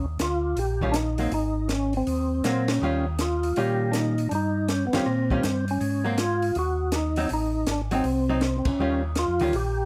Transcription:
Already playing: D#2
0.19 D2 F4, snare, closed hi-hat
0.56 A#1 G4, open hi-hat
0.81 D#3 G3 C#4 F4, kick
0.92 D4, snare, closed hi-hat
0.96 D#4
1.18 F#3 A#3 C4, open hi-hat
1.32 G#1 D#4, open hi-hat
1.69 C#4, snare, closed hi-hat
1.93 C4, open hi-hat
2.07 D#2, open hi-hat
2.44 A#2 F#3 A#3 C4, snare, closed hi-hat
2.68 snare, ride
2.72 C#4
2.82 D#2 D#3 G3 C#4 F4
3.19 F4, snare, closed hi-hat
3.43 open hi-hat
3.56 A#2 D#3 G3 C#4 F4 G4, open hi-hat
3.92 D4, snare, closed hi-hat
3.96 D#4
4.18 open hi-hat
4.29 G2 D4, open hi-hat
4.35 D#4
4.68 C#4, snare, closed hi-hat
4.87 B3
4.93 G2 D#3 G3 C4 C#4 F4, snare, ride
5.06 A#2
5.30 D#3 G3 C#4 F4, kick
5.43 G2, snare, closed hi-hat
5.68 C#4, open hi-hat
5.81 G#2, open hi-hat
6.04 F#3 A#3 C4
6.18 F4, snare, closed hi-hat
6.42 open hi-hat
6.55 D#2 F#4, open hi-hat
6.92 D#4, snare, closed hi-hat
7.16 F#3 C4 D#4, open hi-hat
7.29 A1, open hi-hat
7.34 D#4
7.67 G#1, snare, closed hi-hat
7.71 D4
7.91 F#3 C4 D#4, open hi-hat
8.04 C2, open hi-hat
8.29 F#3 C4 D#4
8.41 snare, closed hi-hat
8.58 C4
8.65 C2 C#4, kick, ride
8.79 D#2 D#3 G3 C#4 F4
9.15 F4, snare, closed hi-hat
9.28 F2
9.40 D2 D#3 G3 C#4 F4, open hi-hat
9.53 A#1 G4, open hi-hat

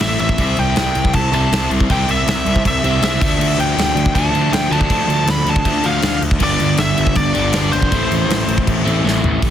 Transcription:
0.00 A1 A2 E3 A3 C4 E4 E5, snare
0.19 A1 E5, crash
0.29 kick
0.38 C2 C3 G3 C4 E4, kick, crash
0.57 C2 G5, crash
0.76 C2, snare, crash
0.95 C2, crash
1.05 kick
1.13 C2 A5, kick, crash
1.32 C2 C3 G3 C4 E4 A5, crash
1.52 C2 C3 G3 C4 E4, snare, crash
1.70 C2, crash
1.80 kick
1.90 C2 C3 G3 C4 E4 G5, kick, crash
2.08 C2 E5, crash
2.27 C2, snare, crash
2.46 C2, crash
2.56 kick
2.65 C2 E5, kick, crash
2.83 C2 C3 G3 C4 E4, crash
3.01 C2 C3 G3 C4 E4 E5, snare, crash
3.21 D2 D3 F3 A3 D4 E5, kick, crash
3.38 D2, crash
3.58 D2 G5, crash
3.77 D2, snare, crash
3.95 D2, crash
4.06 kick
4.15 D2 D3 F3 A3 D4 A5, kick, crash
4.32 D2 F3 A3 D4, crash
4.36 D3
4.52 D2 G5, snare, crash
4.70 D2 D3 F3 A3 D4 A5, crash
4.81 kick
4.90 D2, kick, crash
5.08 D2, crash
5.26 D2, snare, crash
5.30 B5
5.44 D2, crash
5.49 A5
5.56 kick
5.65 D2 D3 F3 A3 D4, kick, crash
5.83 D2 D3 F3 A3 D4 F5, crash
6.02 D2, snare, crash
6.22 D2, crash
6.31 kick
6.39 G1 G2 D3 G3 B3 D4, kick, crash
6.43 D5
6.60 G1, crash
6.77 G1 E5, snare, crash
6.98 G1, crash
7.07 kick
7.15 G1 D5, kick, crash
7.33 G1 G2 D3 G3 B3 D4, crash
7.53 G1 G2 D3 G3 B3 D4, snare, crash
7.72 G1 C5, crash
7.82 kick
7.92 A1 A2 E3 A3 C4 E4, kick, crash
8.11 A1, crash
8.29 A1, snare, crash
8.48 A1, crash
8.58 kick
8.67 A1, kick, crash
8.85 A1 A2 E3 A3 C4 E4, crash
9.04 A1 A2 E3 A3 C4 E4, snare
9.23 A1, floor tom
9.42 A1 A2 E3 A3, kick, open hi-hat

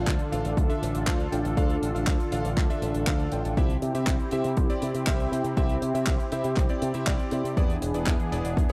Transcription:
Already playing: D3 D4 F4 A4 F5
0.07 D2, kick, clap, closed hi-hat
0.19 closed hi-hat
0.32 A1 D4 F4 A4 F5, closed hi-hat
0.45 A1, closed hi-hat
0.57 D2, kick, closed hi-hat
0.70 D4 F4 A4 E5, closed hi-hat
0.82 A1, closed hi-hat
0.95 A1, closed hi-hat
1.07 D2 D4 F4 A4 F5, kick, clap, closed hi-hat
1.20 closed hi-hat
1.32 A1 D4 F4 A4 G5, closed hi-hat
1.45 A1, closed hi-hat
1.57 D2 D4 F4 A4 F5, kick, closed hi-hat
1.70 closed hi-hat
1.82 A1, closed hi-hat
1.95 A1 D4 F4 A4 F5, closed hi-hat
2.07 D2, kick, clap, closed hi-hat
2.20 closed hi-hat
2.32 A1 D4 F4 A4 F5, closed hi-hat
2.45 A1, closed hi-hat
2.57 D2, kick, clap, closed hi-hat
2.70 D4 F4 A4 E5, closed hi-hat
2.82 A1, closed hi-hat
2.94 A1, closed hi-hat
3.07 D2 D4 F4 A4 F5, kick, clap, closed hi-hat
3.20 closed hi-hat
3.32 A1 D4 F4 A4 G5, closed hi-hat
3.45 A1, closed hi-hat
3.57 C2 C4 E4 G4 E5, kick, closed hi-hat
3.70 closed hi-hat
3.82 C3, closed hi-hat
3.95 C3 C4 E4 G4 E5, closed hi-hat
4.07 C2, kick, clap, closed hi-hat
4.20 closed hi-hat
4.31 C3 C4 E4 G4 E5, closed hi-hat
4.44 C3, closed hi-hat
4.57 C2, kick, closed hi-hat
4.70 C4 E4 G4 D5, closed hi-hat
4.82 C3, closed hi-hat
4.95 C3, closed hi-hat
5.07 C2 C4 E4 G4 E5, kick, clap, closed hi-hat
5.20 closed hi-hat
5.32 C3 C4 E4 G4 G5, closed hi-hat
5.44 C3, closed hi-hat
5.57 C2 C4 E4 G4 E5, kick, closed hi-hat
5.69 closed hi-hat
5.82 C3, closed hi-hat
5.95 C3 C4 E4 G4 E5, closed hi-hat
6.07 C2, kick, clap, closed hi-hat
6.20 closed hi-hat
6.32 C3 C4 E4 G4 E5, closed hi-hat
6.44 C3, closed hi-hat
6.57 C2, kick, clap, closed hi-hat
6.69 C4 E4 G4 D5, closed hi-hat
6.82 C3, closed hi-hat
6.94 C3 C4 E4 G4 E5, closed hi-hat
7.07 C2 C4 E4 G4 D5, kick, clap, closed hi-hat
7.19 closed hi-hat
7.31 C3 C4 E4 G4 D5, closed hi-hat
7.44 C3, closed hi-hat
7.57 E2 E3 B3 D4 E4 G#4 D5, kick, closed hi-hat
7.70 closed hi-hat
7.82 E1, closed hi-hat
7.94 E1 B3 E4 G#4 D5, closed hi-hat
8.06 E2, kick, clap, closed hi-hat
8.20 closed hi-hat
8.32 E1 B3 E4 G#4 D5, closed hi-hat
8.44 E1, closed hi-hat
8.57 E2, kick, closed hi-hat

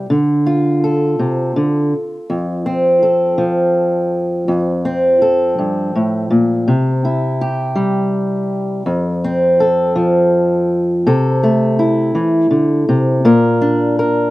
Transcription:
0.10 D3
0.46 F4
0.84 A4
1.19 C3
1.56 D3
2.30 F2
2.66 C4
3.03 A4
3.38 F3
4.48 F2
4.85 C4
5.22 A4
5.58 G2
5.95 A2
6.30 A#2
6.68 C3
7.05 E4
7.41 G4
7.76 G3
8.86 F2
9.24 C4
9.60 A4
9.96 F3
11.07 C3 A4
11.43 A3
11.79 E4
12.15 E3
12.51 D3
12.89 C3
13.25 A#2 A#4
13.62 D4
13.99 A#4

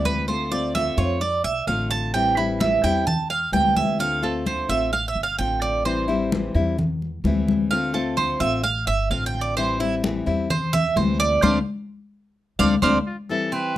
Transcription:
Already playing: D2 E3 G3 C4 E4
0.05 B4, high conga
0.28 D3 A3 C4 F4 C5, high conga
0.51 A3 C4 F4 D5, high conga
0.75 D3 A3 C4 F4 E5, high conga
0.97 F2 A3 C4 F4 C#5, high conga
1.21 D5, muted nylon-string guitar stroke, high conga
1.44 B1 E5, high conga
1.67 A1 D3 A3 C4 F4 F5, high conga
1.91 A5, high conga
2.14 E3 G3 C4 E4 G5, high conga
2.37 G3 C4 E4 B4, high conga
2.60 E3 G3 C4 E4 E5, high conga
2.83 E2 G3 C4 E4 G5, high conga
3.06 A5, muted nylon-string guitar stroke, high conga, low conga
3.30 F5, high conga
3.52 D2 E3 G3 C4 E4 G5, high conga
3.76 E5, high conga
3.99 D3 A3 C4 F4 F5, high conga
4.22 A3 C4 F4 A4, high conga
4.46 D3 A3 C4 F4 C5, high conga
4.69 A1 A3 C4 F4 E5, high conga
4.93 F5, muted nylon-string guitar stroke, high conga
5.08 E5
5.15 G1, high conga
5.23 F5
5.38 A1 D3 A3 C4 F4 G5, high conga
5.62 D5, high conga
5.85 E3 G3 C4 E4 C5, high conga
6.08 G3 C4 E4, high conga
6.32 E3 G3 C4 E4, high conga
6.54 E2 G3 C4 E4, high conga
6.78 muted nylon-string guitar stroke, high conga, low conga
7.02 high conga
7.24 D2 E3 G3 C4 E4, high conga
7.48 high conga
7.71 D3 A3 C4 F4 F5, high conga
7.94 A3 C4 F4 A4, high conga
8.17 D3 A3 C4 F4 C5, high conga
8.40 A1 A3 C4 F4 E5, high conga
8.64 F5, muted nylon-string guitar stroke, high conga
8.87 G1 E5, high conga
9.10 A1 D3 A3 C4 F4 F5, high conga
9.26 G5
9.34 high conga
9.41 D5
9.57 E3 G3 C4 E4 C5, high conga
9.80 G3 C4 E4, high conga
10.03 E3 G3 C4 E4, high conga
10.26 E2 G3 C4 E4, high conga
10.50 C5, muted nylon-string guitar stroke, high conga, low conga
10.73 E5, high conga, low conga
10.96 D2 E3 G3 C4 E4 C5, high conga
11.20 D5
11.42 D2 A3 C4 D4 C5 D5 F5, high conga
12.59 D2 A3 C4 D4 C5 D5 F5, high conga
12.82 D2 A3 C4 D4 C5 D5 F5, high conga
13.06 F4
13.29 E3 G3 C4 E4 A4, high conga
13.52 C4 B4, high conga

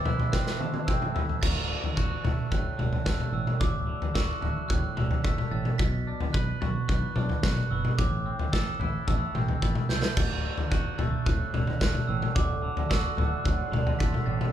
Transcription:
Already playing: A1 A2 C4 A4 C5 E5 C6
0.05 E4 F#6, floor tom, mid tom
0.19 floor tom, mid tom
0.32 C4 F#6, kick, snare
0.47 snare
0.60 A3, high tom
0.74 high tom
0.87 C4 E6, kick, mid tom
1.02 mid tom
1.14 E4, floor tom
1.29 floor tom
1.42 D1 D2 A6, kick, floor tom, crash
1.70 D3
1.84 floor tom
1.96 D1 F#4 F#6, kick
2.24 D1 A3 A6, floor tom, mid tom
2.51 D1 A2 F#6, kick, floor tom
2.78 D1 D3, mid tom
2.93 floor tom
3.06 D1 A3 F#6, kick, snare
3.20 mid tom
3.32 A1 A2 E6
3.47 mid tom
3.60 D1 D2 D6, kick, floor tom
3.87 D3
4.02 floor tom
4.14 D1 F#4 E6, kick, snare
4.41 D1 A3 F#6, floor tom
4.69 D1 A2 F#6, kick, floor tom
4.97 D1 D3, mid tom
5.11 floor tom
5.24 D1 A3 B6, kick
5.38 mid tom
5.51 A1 A2 A6
5.65 mid tom
5.78 B1 B2 B6, kick, floor tom
6.07 D4
6.21 floor tom
6.33 B1 B4 F#6, kick
6.61 B1 F#4 A6, floor tom, mid tom
6.88 B1 B3 F#6, kick, floor tom
7.16 B1 D4, mid tom
7.29 floor tom
7.43 B1 F#4 F#6, kick, snare
7.57 mid tom
7.71 F#1 B3 E6
7.85 mid tom
7.98 A1 A2 D6, kick, floor tom
8.26 C4
8.39 floor tom
8.53 A1 A4 E6, kick, snare
8.79 A1 E4 F#6, floor tom
9.08 A1 A3 E6, kick, floor tom
9.35 A1 C4, mid tom
9.48 floor tom
9.62 A1 E4 A6, kick
9.75 mid tom
9.89 C2 A3 G6, snare
10.02 snare
10.17 D1 D2 A4 D5 F#5 D6 A6, kick, floor tom, crash
10.44 D3
10.58 floor tom
10.70 D1 F#4 F#6, kick
10.98 D1 A3 A6, floor tom, mid tom
11.26 D1 A2 F#6, kick, floor tom
11.54 D1 D3, mid tom
11.67 floor tom
11.80 D1 A3 F#6, kick, snare
11.95 mid tom
12.07 A1 A2 E6
12.22 mid tom
12.35 D1 D2 C6 D6, kick, floor tom
12.63 D3
12.77 floor tom
12.90 D1 F#4 E6, kick, snare
13.17 D1 A3 F#6, floor tom
13.44 D1 A2 F#6, kick, floor tom
13.72 D1 D3, mid tom
13.87 floor tom
13.99 D1 A3 B6, kick
14.14 mid tom
14.26 A1 A2 A6
14.41 mid tom

